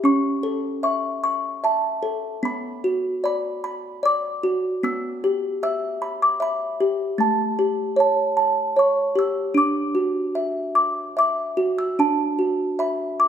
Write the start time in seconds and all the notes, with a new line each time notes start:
0.04 C#4 C#6
0.43 A4
0.83 E5 C#6
1.24 C#6
1.64 E5 A5
2.03 A4
2.43 B3 B5
2.84 F#4
3.24 D5 B5
3.64 B5
4.03 D5 D6
4.43 F#4
4.83 B3 E6
5.24 G4
5.63 E5 E6
6.02 B5
6.22 D6
6.40 E5 B5
6.80 G4
7.18 A3 A5
7.59 G4
7.96 C#5 A5
8.37 A5
8.76 C#5 C#6
9.15 G4 E6
9.54 D4 D6
9.95 F#4
10.35 E5
10.75 D6
11.17 E5 D6
11.57 F#4
11.78 E6
11.99 D4 A5
12.39 F#4
12.79 E5 B5
13.20 D6